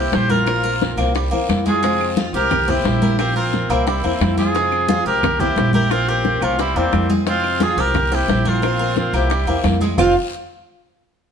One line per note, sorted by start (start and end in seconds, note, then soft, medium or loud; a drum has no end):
0.00 0.12 E3 medium
0.00 0.12 A#3 medium
0.00 0.13 C4 medium
0.00 0.29 C4 medium
0.00 0.13 E4 medium
0.00 0.16 E4 medium
0.00 0.16 G4 medium
0.12 0.92 A#1 medium
0.12 0.46 E3 medium
0.12 0.46 A#3 medium
0.12 0.47 C4 medium
0.12 0.47 E4 medium
0.12 0.32 G4 medium
0.12 0.32 C5 loud
0.12 high bongo medium
0.12 low bongo medium
0.12 high conga medium
0.12 short guiro medium
0.30 0.98 F4 medium
0.30 0.45 A#4 medium
0.30 0.98 A#4 loud
0.30 high conga medium
0.30 short guiro medium
0.46 0.79 F3 medium
0.46 0.80 A#3 medium
0.46 0.81 C4 medium
0.46 0.81 F4 medium
0.46 0.62 A#4 medium
0.46 high bongo medium
0.46 long guiro medium
0.46 claves medium
0.64 0.97 A#4 medium
0.64 high bongo soft
0.64 high conga soft
0.80 0.97 F3 medium
0.80 0.98 A#3 medium
0.80 0.98 C4 medium
0.80 0.97 F4 medium
0.80 high bongo medium
0.80 high conga medium
0.80 short guiro medium
0.97 1.29 C2 loud
0.97 1.14 A#3 medium
0.97 1.14 C4 medium
0.97 1.14 F4 medium
0.97 high bongo soft
0.97 high conga soft
0.97 short guiro medium
0.97 claves medium
1.15 1.31 G3 medium
1.15 muted steel-string acoustic guitar stroke medium
1.15 high bongo medium
1.15 high conga soft
1.15 long guiro medium
1.31 1.48 E2 medium
1.31 1.47 E3 medium
1.31 1.64 A#3 medium
1.31 1.48 A#3 medium
1.31 1.49 C4 medium
1.31 1.48 E4 medium
1.31 high bongo soft
1.31 high conga soft
1.49 2.28 F2 medium
1.49 1.82 E3 medium
1.49 1.83 A#3 soft
1.49 1.83 C4 medium
1.49 1.83 E4 medium
1.49 high bongo medium
1.49 low bongo medium
1.49 high conga medium
1.49 short guiro medium
1.49 claves medium
1.66 1.82 G#3 medium
1.66 2.15 F4 medium
1.66 2.14 G#4 loud
1.66 high conga medium
1.66 short guiro medium
1.82 2.16 C3 medium
1.82 2.15 F3 medium
1.82 2.16 G#3 medium
1.82 2.17 C4 medium
1.82 2.17 F4 medium
1.82 high bongo medium
1.82 high conga soft
1.82 long guiro medium
2.00 high bongo soft
2.00 high conga soft
2.00 claves medium
2.17 2.33 F3 medium
2.17 2.33 G#3 medium
2.17 2.33 C4 medium
2.17 2.33 F4 medium
2.17 2.32 F4 medium
2.17 high bongo medium
2.17 high conga loud
2.17 short guiro medium
2.33 2.81 C2 loud
2.33 2.51 F3 medium
2.33 2.51 G#3 medium
2.33 2.50 C4 medium
2.33 2.50 F4 medium
2.33 2.67 G4 medium
2.33 2.72 G4 loud
2.33 2.71 A#4 loud
2.33 high bongo soft
2.33 high conga soft
2.33 short guiro medium
2.51 muted steel-string acoustic guitar stroke medium
2.51 high bongo medium
2.51 high conga soft
2.51 low conga medium
2.51 long guiro medium
2.51 claves medium
2.68 2.84 E3 medium
2.68 2.84 A#3 medium
2.68 3.01 C4 medium
2.68 2.85 C4 medium
2.68 2.84 E4 medium
2.68 3.19 E4 medium
2.68 3.18 G4 medium
2.68 high bongo soft
2.68 high conga soft
2.68 low conga medium
2.84 3.64 A#1 medium
2.84 3.18 E3 soft
2.84 3.18 A#3 medium
2.84 3.19 C4 medium
2.84 3.19 E4 medium
2.84 high bongo medium
2.84 low bongo medium
2.84 high conga medium
2.84 short guiro medium
3.02 3.18 A#4 medium
3.02 high conga medium
3.02 short guiro medium
3.18 3.51 F3 medium
3.18 3.52 A#3 medium
3.18 3.35 C4 medium
3.18 3.53 C4 medium
3.18 3.53 F4 medium
3.18 3.35 G4 loud
3.18 3.35 A#4 medium
3.18 high bongo medium
3.18 high conga soft
3.18 long guiro medium
3.18 claves medium
3.36 3.71 C4 medium
3.36 3.72 F4 medium
3.36 3.69 A#4 medium
3.36 high bongo soft
3.36 high conga soft
3.53 3.69 F3 medium
3.53 3.70 A#3 medium
3.53 3.70 C4 medium
3.53 3.68 F4 medium
3.53 high bongo medium
3.53 high conga medium
3.53 short guiro medium
3.69 4.01 C2 loud
3.69 3.86 A#3 medium
3.69 3.87 A#3 medium
3.69 3.87 C4 medium
3.69 4.38 C4 medium
3.69 4.38 E4 medium
3.69 3.86 F4 medium
3.69 high bongo soft
3.69 high conga soft
3.69 short guiro medium
3.69 claves medium
3.87 4.03 G3 medium
3.87 muted steel-string acoustic guitar stroke medium
3.87 high bongo medium
3.87 high conga soft
3.87 long guiro medium
4.03 4.19 E2 medium
4.03 4.20 E3 medium
4.03 4.37 A#3 medium
4.03 4.20 A#3 medium
4.03 4.20 C4 medium
4.03 4.20 E4 medium
4.03 high bongo soft
4.03 high conga soft
4.20 5.00 F2 medium
4.20 4.54 E3 soft
4.20 4.54 A#3 soft
4.20 4.55 C4 medium
4.20 4.55 E4 medium
4.20 high bongo medium
4.20 low bongo medium
4.20 high conga medium
4.20 short guiro medium
4.20 claves medium
4.38 4.53 G#3 medium
4.38 5.02 F4 medium
4.38 5.02 G#4 loud
4.38 high conga medium
4.38 short guiro medium
4.55 4.88 C3 medium
4.55 4.88 F3 medium
4.55 4.88 G#3 medium
4.55 4.89 C4 medium
4.55 4.89 F4 medium
4.55 high bongo medium
4.72 high bongo soft
4.72 high conga soft
4.72 claves medium
4.89 5.05 F3 medium
4.89 5.05 G#3 medium
4.89 5.05 C4 medium
4.89 5.05 F4 medium
4.89 high bongo medium
4.89 high conga loud
5.05 5.53 C2 medium
5.05 5.23 F3 medium
5.05 5.23 G#3 medium
5.05 5.22 C4 medium
5.05 5.22 F4 medium
5.05 5.39 G4 medium
5.05 5.42 G4 medium
5.05 5.41 A#4 loud
5.05 high bongo soft
5.05 high conga soft
5.23 muted steel-string acoustic guitar stroke medium
5.23 high bongo medium
5.23 high conga soft
5.23 low conga medium
5.23 claves medium
5.39 5.55 E3 medium
5.39 5.55 A#3 medium
5.39 5.56 C4 medium
5.39 5.73 C4 medium
5.39 5.56 E4 medium
5.39 5.73 E4 medium
5.39 5.73 G4 loud
5.39 high bongo soft
5.39 high conga soft
5.39 low conga medium
5.56 6.36 A#1 medium
5.56 5.89 E3 medium
5.56 5.90 C4 medium
5.56 5.91 E4 medium
5.56 high bongo medium
5.56 low bongo medium
5.56 high conga medium
5.73 5.92 E4 medium
5.73 5.92 G4 loud
5.73 5.90 A#4 medium
5.73 high conga medium
5.90 6.22 F3 medium
5.90 6.23 A#3 medium
5.90 6.09 C4 medium
5.90 6.24 C4 medium
5.90 6.10 F4 loud
5.90 6.24 F4 medium
5.90 6.07 A#4 medium
5.90 high bongo medium
5.90 high conga soft
5.90 claves medium
6.08 6.43 C4 medium
6.08 6.45 G4 loud
6.08 6.41 A#4 medium
6.08 high bongo soft
6.08 high conga soft
6.24 6.40 F3 medium
6.24 6.41 A#3 medium
6.24 6.41 C4 medium
6.24 6.40 F4 medium
6.24 high bongo medium
6.24 high conga medium
6.41 6.73 C2 medium
6.41 6.58 A#3 medium
6.41 6.57 A#3 medium
6.41 6.57 C4 medium
6.41 6.58 C#4 medium
6.41 6.58 F4 medium
6.41 6.59 F4 medium
6.41 high bongo soft
6.41 high conga soft
6.41 claves medium
6.58 6.75 G3 medium
6.58 6.77 C4 medium
6.58 6.79 E4 loud
6.58 muted steel-string acoustic guitar stroke medium
6.58 high bongo medium
6.58 high conga soft
6.75 6.91 E2 medium
6.75 6.91 E3 medium
6.75 7.10 G3 medium
6.75 7.09 A#3 medium
6.75 6.92 A#3 medium
6.75 6.92 C4 medium
6.75 7.11 C4 medium
6.75 6.92 E4 medium
6.75 high bongo soft
6.75 high conga soft
6.92 7.72 F2 medium
6.92 7.26 E3 medium
6.92 7.26 A#3 medium
6.92 7.27 C4 medium
6.92 7.27 E4 medium
6.92 high bongo medium
6.92 low bongo medium
6.92 high conga medium
6.92 claves medium
7.10 7.26 G#3 medium
7.10 high conga medium
7.27 7.60 C3 medium
7.27 7.59 F3 medium
7.27 7.60 G#3 medium
7.27 7.63 C4 medium
7.27 7.61 C4 medium
7.27 7.61 F4 medium
7.27 7.64 F4 loud
7.27 high bongo medium
7.27 high conga soft
7.27 long guiro medium
7.44 high bongo soft
7.44 high conga soft
7.44 claves medium
7.60 7.77 F3 medium
7.60 7.77 G#3 medium
7.60 7.77 C4 medium
7.60 7.77 F4 medium
7.60 7.81 F4 medium
7.60 7.76 F4 medium
7.60 7.82 G#4 loud
7.60 high bongo medium
7.60 high conga loud
7.60 short guiro medium
7.77 8.25 C2 loud
7.77 7.94 F3 medium
7.77 7.94 G#3 medium
7.77 7.94 C4 medium
7.77 7.94 F4 medium
7.77 8.11 G4 medium
7.77 8.15 G4 medium
7.77 8.16 A#4 loud
7.77 high bongo soft
7.77 high conga soft
7.77 short guiro medium
7.94 muted steel-string acoustic guitar stroke medium
7.94 high bongo medium
7.94 high conga soft
7.94 low conga medium
7.94 long guiro medium
7.94 claves medium
8.11 8.27 E3 medium
8.11 8.28 A#3 medium
8.11 8.45 C4 medium
8.11 8.29 C4 medium
8.11 8.28 E4 medium
8.11 8.49 E4 medium
8.11 8.50 G4 medium
8.11 high bongo soft
8.11 high conga soft
8.28 9.07 A#1 medium
8.28 8.62 E3 soft
8.28 8.62 A#3 medium
8.28 8.63 C4 medium
8.28 high bongo medium
8.28 low bongo medium
8.28 high conga medium
8.28 short guiro medium
8.45 8.97 C4 medium
8.45 8.98 F4 loud
8.45 8.61 A#4 medium
8.45 high conga medium
8.45 short guiro medium
8.62 8.95 F3 medium
8.62 8.96 A#3 medium
8.62 8.96 C4 medium
8.62 8.97 F4 medium
8.62 8.78 A#4 medium
8.62 high bongo medium
8.62 high conga soft
8.62 long guiro medium
8.62 claves medium
8.79 9.12 A#4 medium
8.79 high bongo soft
8.79 high conga soft
8.96 9.13 F3 medium
8.96 9.13 A#3 medium
8.96 9.13 C4 medium
8.96 9.13 F4 medium
8.96 high bongo medium
8.96 high conga medium
8.96 short guiro medium
9.13 9.45 C2 loud
9.13 9.29 A#3 medium
9.13 9.30 A#3 medium
9.13 9.31 C4 medium
9.13 9.62 E4 medium
9.13 9.30 F4 medium
9.13 9.62 G4 medium
9.13 high bongo soft
9.13 high conga soft
9.13 short guiro medium
9.13 claves medium
9.30 9.47 G3 medium
9.30 muted steel-string acoustic guitar stroke medium
9.30 high bongo medium
9.30 high conga soft
9.30 long guiro medium
9.47 9.63 E2 medium
9.47 9.64 E3 medium
9.47 9.80 A#3 medium
9.47 9.64 A#3 medium
9.47 9.64 C4 medium
9.47 9.64 E4 medium
9.47 high bongo soft
9.47 high conga soft
9.64 9.94 F2 medium
9.64 9.98 E3 soft
9.64 9.99 A#3 medium
9.64 9.99 C4 medium
9.64 9.99 E4 medium
9.64 high bongo medium
9.64 low bongo medium
9.64 high conga medium
9.64 short guiro medium
9.64 claves medium
9.81 9.98 G#3 medium
9.81 high conga medium
9.81 short guiro medium
9.98 10.14 F1 loud
9.98 10.12 F2 medium
9.98 10.12 C3 medium
9.98 10.13 F3 medium
9.98 10.13 G#3 medium
9.98 10.14 C4 medium
9.98 10.13 C4 medium
9.98 10.14 F4 medium
9.98 10.15 F4 medium
9.98 10.13 F4 medium
9.98 10.14 C5 medium
9.98 10.15 F5 loud
9.98 low bongo loud
9.98 low conga loud
9.98 long guiro medium
9.98 claves loud